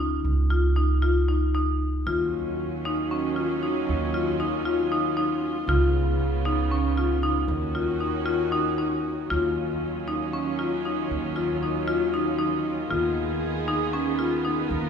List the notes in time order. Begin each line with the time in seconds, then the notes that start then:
Already playing: C#2
0.00 D#4
0.24 C#2
0.50 F4
0.76 D#4
1.02 F4
1.28 D#4
1.55 D#4
2.06 D#2 D#3 F#3 C#4 F4
2.85 D#4
3.11 C#4
3.36 F4
3.63 D#4
3.89 D#2
4.14 F4
4.40 D#4
4.66 F4
4.92 D#4
5.17 D#4
5.67 C#2 C#3 B3 F4
6.45 D#4
6.72 C#4
6.98 F4
7.23 D#4
7.48 D#2 D#3 C#4 F#4
7.75 F4
8.01 D#4
8.26 F4
8.52 D#4
8.78 D#4
9.30 D#2 D#3 F#3 C#4 F4
10.08 D#4
10.33 C#4
10.59 F4
10.85 D#4
11.11 D#2
11.36 F4
11.63 D#4
11.88 F4
12.14 D#4
12.39 D#4
12.91 D#2 B3 F4 G#4
13.68 D#4
13.93 C#4
14.19 F4
14.45 D#4
14.70 D#2 A#4